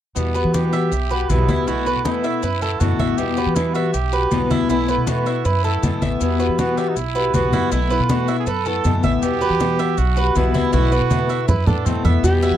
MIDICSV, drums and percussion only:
0, 0, Header, 1, 2, 480
1, 0, Start_track
1, 0, Key_signature, 1, "minor"
1, 0, Tempo, 377358
1, 202, Time_signature, 4, 2, 24, 8
1, 15989, End_track
2, 0, Start_track
2, 0, Title_t, "Drums"
2, 201, Note_on_c, 9, 74, 58
2, 204, Note_on_c, 9, 70, 63
2, 206, Note_on_c, 9, 63, 31
2, 328, Note_off_c, 9, 74, 0
2, 332, Note_off_c, 9, 70, 0
2, 333, Note_off_c, 9, 63, 0
2, 444, Note_on_c, 9, 70, 28
2, 448, Note_on_c, 9, 63, 33
2, 571, Note_off_c, 9, 70, 0
2, 575, Note_off_c, 9, 63, 0
2, 685, Note_on_c, 9, 73, 68
2, 686, Note_on_c, 9, 70, 57
2, 692, Note_on_c, 9, 63, 85
2, 812, Note_off_c, 9, 73, 0
2, 813, Note_off_c, 9, 70, 0
2, 819, Note_off_c, 9, 63, 0
2, 924, Note_on_c, 9, 73, 62
2, 928, Note_on_c, 9, 70, 26
2, 930, Note_on_c, 9, 63, 29
2, 1051, Note_off_c, 9, 73, 0
2, 1055, Note_off_c, 9, 70, 0
2, 1057, Note_off_c, 9, 63, 0
2, 1166, Note_on_c, 9, 74, 70
2, 1170, Note_on_c, 9, 63, 33
2, 1170, Note_on_c, 9, 70, 58
2, 1293, Note_off_c, 9, 74, 0
2, 1298, Note_off_c, 9, 63, 0
2, 1298, Note_off_c, 9, 70, 0
2, 1404, Note_on_c, 9, 70, 24
2, 1414, Note_on_c, 9, 63, 29
2, 1531, Note_off_c, 9, 70, 0
2, 1541, Note_off_c, 9, 63, 0
2, 1646, Note_on_c, 9, 73, 64
2, 1648, Note_on_c, 9, 70, 60
2, 1653, Note_on_c, 9, 63, 78
2, 1774, Note_off_c, 9, 73, 0
2, 1776, Note_off_c, 9, 70, 0
2, 1780, Note_off_c, 9, 63, 0
2, 1886, Note_on_c, 9, 73, 67
2, 1891, Note_on_c, 9, 63, 79
2, 1892, Note_on_c, 9, 70, 27
2, 2013, Note_off_c, 9, 73, 0
2, 2018, Note_off_c, 9, 63, 0
2, 2019, Note_off_c, 9, 70, 0
2, 2126, Note_on_c, 9, 74, 61
2, 2131, Note_on_c, 9, 70, 55
2, 2133, Note_on_c, 9, 63, 31
2, 2253, Note_off_c, 9, 74, 0
2, 2259, Note_off_c, 9, 70, 0
2, 2260, Note_off_c, 9, 63, 0
2, 2368, Note_on_c, 9, 70, 27
2, 2375, Note_on_c, 9, 63, 34
2, 2496, Note_off_c, 9, 70, 0
2, 2502, Note_off_c, 9, 63, 0
2, 2608, Note_on_c, 9, 70, 56
2, 2611, Note_on_c, 9, 73, 65
2, 2612, Note_on_c, 9, 63, 88
2, 2735, Note_off_c, 9, 70, 0
2, 2738, Note_off_c, 9, 73, 0
2, 2740, Note_off_c, 9, 63, 0
2, 2847, Note_on_c, 9, 70, 27
2, 2847, Note_on_c, 9, 73, 63
2, 2974, Note_off_c, 9, 70, 0
2, 2974, Note_off_c, 9, 73, 0
2, 3087, Note_on_c, 9, 70, 61
2, 3090, Note_on_c, 9, 74, 70
2, 3093, Note_on_c, 9, 63, 32
2, 3214, Note_off_c, 9, 70, 0
2, 3217, Note_off_c, 9, 74, 0
2, 3220, Note_off_c, 9, 63, 0
2, 3329, Note_on_c, 9, 70, 26
2, 3333, Note_on_c, 9, 63, 31
2, 3456, Note_off_c, 9, 70, 0
2, 3460, Note_off_c, 9, 63, 0
2, 3566, Note_on_c, 9, 70, 60
2, 3567, Note_on_c, 9, 73, 58
2, 3573, Note_on_c, 9, 63, 71
2, 3693, Note_off_c, 9, 70, 0
2, 3695, Note_off_c, 9, 73, 0
2, 3700, Note_off_c, 9, 63, 0
2, 3807, Note_on_c, 9, 70, 24
2, 3809, Note_on_c, 9, 73, 69
2, 3810, Note_on_c, 9, 63, 76
2, 3934, Note_off_c, 9, 70, 0
2, 3937, Note_off_c, 9, 63, 0
2, 3937, Note_off_c, 9, 73, 0
2, 4043, Note_on_c, 9, 70, 60
2, 4049, Note_on_c, 9, 74, 61
2, 4170, Note_off_c, 9, 70, 0
2, 4176, Note_off_c, 9, 74, 0
2, 4284, Note_on_c, 9, 70, 29
2, 4294, Note_on_c, 9, 63, 36
2, 4412, Note_off_c, 9, 70, 0
2, 4421, Note_off_c, 9, 63, 0
2, 4525, Note_on_c, 9, 70, 59
2, 4531, Note_on_c, 9, 73, 59
2, 4533, Note_on_c, 9, 63, 90
2, 4652, Note_off_c, 9, 70, 0
2, 4658, Note_off_c, 9, 73, 0
2, 4661, Note_off_c, 9, 63, 0
2, 4766, Note_on_c, 9, 70, 26
2, 4772, Note_on_c, 9, 73, 60
2, 4774, Note_on_c, 9, 63, 31
2, 4894, Note_off_c, 9, 70, 0
2, 4899, Note_off_c, 9, 73, 0
2, 4901, Note_off_c, 9, 63, 0
2, 5008, Note_on_c, 9, 70, 65
2, 5012, Note_on_c, 9, 74, 67
2, 5014, Note_on_c, 9, 63, 31
2, 5135, Note_off_c, 9, 70, 0
2, 5140, Note_off_c, 9, 74, 0
2, 5142, Note_off_c, 9, 63, 0
2, 5246, Note_on_c, 9, 70, 28
2, 5255, Note_on_c, 9, 63, 35
2, 5374, Note_off_c, 9, 70, 0
2, 5382, Note_off_c, 9, 63, 0
2, 5485, Note_on_c, 9, 70, 56
2, 5489, Note_on_c, 9, 73, 63
2, 5493, Note_on_c, 9, 63, 74
2, 5612, Note_off_c, 9, 70, 0
2, 5616, Note_off_c, 9, 73, 0
2, 5620, Note_off_c, 9, 63, 0
2, 5730, Note_on_c, 9, 70, 26
2, 5731, Note_on_c, 9, 73, 65
2, 5734, Note_on_c, 9, 63, 68
2, 5858, Note_off_c, 9, 70, 0
2, 5858, Note_off_c, 9, 73, 0
2, 5862, Note_off_c, 9, 63, 0
2, 5971, Note_on_c, 9, 74, 57
2, 5974, Note_on_c, 9, 70, 65
2, 6099, Note_off_c, 9, 74, 0
2, 6101, Note_off_c, 9, 70, 0
2, 6211, Note_on_c, 9, 70, 29
2, 6212, Note_on_c, 9, 63, 34
2, 6338, Note_off_c, 9, 70, 0
2, 6339, Note_off_c, 9, 63, 0
2, 6449, Note_on_c, 9, 70, 59
2, 6452, Note_on_c, 9, 73, 63
2, 6453, Note_on_c, 9, 63, 87
2, 6576, Note_off_c, 9, 70, 0
2, 6579, Note_off_c, 9, 73, 0
2, 6580, Note_off_c, 9, 63, 0
2, 6693, Note_on_c, 9, 70, 25
2, 6693, Note_on_c, 9, 73, 62
2, 6820, Note_off_c, 9, 70, 0
2, 6820, Note_off_c, 9, 73, 0
2, 6931, Note_on_c, 9, 70, 56
2, 6935, Note_on_c, 9, 63, 33
2, 6935, Note_on_c, 9, 74, 72
2, 7058, Note_off_c, 9, 70, 0
2, 7062, Note_off_c, 9, 63, 0
2, 7062, Note_off_c, 9, 74, 0
2, 7178, Note_on_c, 9, 63, 34
2, 7178, Note_on_c, 9, 70, 26
2, 7305, Note_off_c, 9, 63, 0
2, 7305, Note_off_c, 9, 70, 0
2, 7414, Note_on_c, 9, 73, 58
2, 7416, Note_on_c, 9, 70, 66
2, 7420, Note_on_c, 9, 63, 78
2, 7542, Note_off_c, 9, 73, 0
2, 7543, Note_off_c, 9, 70, 0
2, 7548, Note_off_c, 9, 63, 0
2, 7655, Note_on_c, 9, 73, 67
2, 7657, Note_on_c, 9, 70, 27
2, 7660, Note_on_c, 9, 63, 73
2, 7782, Note_off_c, 9, 73, 0
2, 7784, Note_off_c, 9, 70, 0
2, 7787, Note_off_c, 9, 63, 0
2, 7895, Note_on_c, 9, 70, 62
2, 7898, Note_on_c, 9, 63, 32
2, 7899, Note_on_c, 9, 74, 58
2, 8023, Note_off_c, 9, 70, 0
2, 8025, Note_off_c, 9, 63, 0
2, 8026, Note_off_c, 9, 74, 0
2, 8135, Note_on_c, 9, 70, 26
2, 8142, Note_on_c, 9, 63, 34
2, 8263, Note_off_c, 9, 70, 0
2, 8270, Note_off_c, 9, 63, 0
2, 8377, Note_on_c, 9, 70, 55
2, 8379, Note_on_c, 9, 73, 59
2, 8380, Note_on_c, 9, 63, 83
2, 8504, Note_off_c, 9, 70, 0
2, 8506, Note_off_c, 9, 73, 0
2, 8507, Note_off_c, 9, 63, 0
2, 8619, Note_on_c, 9, 63, 32
2, 8619, Note_on_c, 9, 70, 26
2, 8619, Note_on_c, 9, 73, 65
2, 8746, Note_off_c, 9, 63, 0
2, 8746, Note_off_c, 9, 70, 0
2, 8746, Note_off_c, 9, 73, 0
2, 8857, Note_on_c, 9, 70, 60
2, 8861, Note_on_c, 9, 74, 68
2, 8862, Note_on_c, 9, 63, 31
2, 8984, Note_off_c, 9, 70, 0
2, 8988, Note_off_c, 9, 74, 0
2, 8989, Note_off_c, 9, 63, 0
2, 9097, Note_on_c, 9, 63, 30
2, 9097, Note_on_c, 9, 70, 27
2, 9224, Note_off_c, 9, 63, 0
2, 9224, Note_off_c, 9, 70, 0
2, 9334, Note_on_c, 9, 70, 61
2, 9337, Note_on_c, 9, 63, 83
2, 9337, Note_on_c, 9, 73, 63
2, 9461, Note_off_c, 9, 70, 0
2, 9464, Note_off_c, 9, 63, 0
2, 9464, Note_off_c, 9, 73, 0
2, 9574, Note_on_c, 9, 63, 72
2, 9577, Note_on_c, 9, 70, 27
2, 9580, Note_on_c, 9, 73, 69
2, 9701, Note_off_c, 9, 63, 0
2, 9705, Note_off_c, 9, 70, 0
2, 9707, Note_off_c, 9, 73, 0
2, 9814, Note_on_c, 9, 74, 61
2, 9815, Note_on_c, 9, 70, 61
2, 9818, Note_on_c, 9, 63, 32
2, 9942, Note_off_c, 9, 70, 0
2, 9942, Note_off_c, 9, 74, 0
2, 9946, Note_off_c, 9, 63, 0
2, 10055, Note_on_c, 9, 70, 27
2, 10062, Note_on_c, 9, 63, 31
2, 10183, Note_off_c, 9, 70, 0
2, 10189, Note_off_c, 9, 63, 0
2, 10292, Note_on_c, 9, 70, 59
2, 10297, Note_on_c, 9, 73, 66
2, 10298, Note_on_c, 9, 63, 93
2, 10419, Note_off_c, 9, 70, 0
2, 10424, Note_off_c, 9, 73, 0
2, 10425, Note_off_c, 9, 63, 0
2, 10532, Note_on_c, 9, 70, 27
2, 10539, Note_on_c, 9, 73, 64
2, 10660, Note_off_c, 9, 70, 0
2, 10666, Note_off_c, 9, 73, 0
2, 10769, Note_on_c, 9, 70, 60
2, 10776, Note_on_c, 9, 74, 66
2, 10780, Note_on_c, 9, 63, 31
2, 10896, Note_off_c, 9, 70, 0
2, 10903, Note_off_c, 9, 74, 0
2, 10907, Note_off_c, 9, 63, 0
2, 11009, Note_on_c, 9, 70, 26
2, 11020, Note_on_c, 9, 63, 34
2, 11137, Note_off_c, 9, 70, 0
2, 11147, Note_off_c, 9, 63, 0
2, 11247, Note_on_c, 9, 70, 60
2, 11255, Note_on_c, 9, 73, 60
2, 11258, Note_on_c, 9, 63, 74
2, 11374, Note_off_c, 9, 70, 0
2, 11382, Note_off_c, 9, 73, 0
2, 11385, Note_off_c, 9, 63, 0
2, 11489, Note_on_c, 9, 70, 27
2, 11495, Note_on_c, 9, 73, 69
2, 11496, Note_on_c, 9, 63, 80
2, 11616, Note_off_c, 9, 70, 0
2, 11622, Note_off_c, 9, 73, 0
2, 11623, Note_off_c, 9, 63, 0
2, 11733, Note_on_c, 9, 70, 64
2, 11737, Note_on_c, 9, 74, 59
2, 11738, Note_on_c, 9, 63, 33
2, 11860, Note_off_c, 9, 70, 0
2, 11864, Note_off_c, 9, 74, 0
2, 11866, Note_off_c, 9, 63, 0
2, 11971, Note_on_c, 9, 70, 27
2, 11976, Note_on_c, 9, 63, 33
2, 12099, Note_off_c, 9, 70, 0
2, 12103, Note_off_c, 9, 63, 0
2, 12210, Note_on_c, 9, 70, 53
2, 12212, Note_on_c, 9, 73, 62
2, 12217, Note_on_c, 9, 63, 86
2, 12337, Note_off_c, 9, 70, 0
2, 12339, Note_off_c, 9, 73, 0
2, 12345, Note_off_c, 9, 63, 0
2, 12454, Note_on_c, 9, 73, 66
2, 12455, Note_on_c, 9, 70, 27
2, 12457, Note_on_c, 9, 63, 32
2, 12581, Note_off_c, 9, 73, 0
2, 12582, Note_off_c, 9, 70, 0
2, 12584, Note_off_c, 9, 63, 0
2, 12688, Note_on_c, 9, 70, 69
2, 12693, Note_on_c, 9, 74, 76
2, 12701, Note_on_c, 9, 63, 33
2, 12816, Note_off_c, 9, 70, 0
2, 12821, Note_off_c, 9, 74, 0
2, 12828, Note_off_c, 9, 63, 0
2, 12932, Note_on_c, 9, 70, 28
2, 12943, Note_on_c, 9, 63, 33
2, 13059, Note_off_c, 9, 70, 0
2, 13070, Note_off_c, 9, 63, 0
2, 13169, Note_on_c, 9, 70, 64
2, 13173, Note_on_c, 9, 73, 69
2, 13182, Note_on_c, 9, 63, 75
2, 13296, Note_off_c, 9, 70, 0
2, 13300, Note_off_c, 9, 73, 0
2, 13309, Note_off_c, 9, 63, 0
2, 13410, Note_on_c, 9, 70, 29
2, 13415, Note_on_c, 9, 73, 70
2, 13418, Note_on_c, 9, 63, 80
2, 13537, Note_off_c, 9, 70, 0
2, 13542, Note_off_c, 9, 73, 0
2, 13545, Note_off_c, 9, 63, 0
2, 13647, Note_on_c, 9, 70, 66
2, 13655, Note_on_c, 9, 74, 64
2, 13659, Note_on_c, 9, 63, 74
2, 13775, Note_off_c, 9, 70, 0
2, 13783, Note_off_c, 9, 74, 0
2, 13786, Note_off_c, 9, 63, 0
2, 13889, Note_on_c, 9, 70, 29
2, 14016, Note_off_c, 9, 70, 0
2, 14125, Note_on_c, 9, 70, 54
2, 14128, Note_on_c, 9, 73, 70
2, 14131, Note_on_c, 9, 63, 89
2, 14253, Note_off_c, 9, 70, 0
2, 14255, Note_off_c, 9, 73, 0
2, 14258, Note_off_c, 9, 63, 0
2, 14369, Note_on_c, 9, 70, 28
2, 14371, Note_on_c, 9, 73, 70
2, 14496, Note_off_c, 9, 70, 0
2, 14498, Note_off_c, 9, 73, 0
2, 14608, Note_on_c, 9, 70, 64
2, 14610, Note_on_c, 9, 74, 64
2, 14611, Note_on_c, 9, 64, 91
2, 14735, Note_off_c, 9, 70, 0
2, 14737, Note_off_c, 9, 74, 0
2, 14739, Note_off_c, 9, 64, 0
2, 14849, Note_on_c, 9, 64, 94
2, 14853, Note_on_c, 9, 70, 29
2, 14976, Note_off_c, 9, 64, 0
2, 14980, Note_off_c, 9, 70, 0
2, 15087, Note_on_c, 9, 70, 63
2, 15089, Note_on_c, 9, 73, 64
2, 15091, Note_on_c, 9, 64, 68
2, 15214, Note_off_c, 9, 70, 0
2, 15216, Note_off_c, 9, 73, 0
2, 15218, Note_off_c, 9, 64, 0
2, 15324, Note_on_c, 9, 73, 68
2, 15327, Note_on_c, 9, 70, 26
2, 15330, Note_on_c, 9, 64, 70
2, 15451, Note_off_c, 9, 73, 0
2, 15455, Note_off_c, 9, 70, 0
2, 15457, Note_off_c, 9, 64, 0
2, 15561, Note_on_c, 9, 74, 68
2, 15570, Note_on_c, 9, 63, 34
2, 15570, Note_on_c, 9, 70, 86
2, 15688, Note_off_c, 9, 74, 0
2, 15697, Note_off_c, 9, 63, 0
2, 15698, Note_off_c, 9, 70, 0
2, 15808, Note_on_c, 9, 70, 32
2, 15811, Note_on_c, 9, 63, 37
2, 15935, Note_off_c, 9, 70, 0
2, 15938, Note_off_c, 9, 63, 0
2, 15989, End_track
0, 0, End_of_file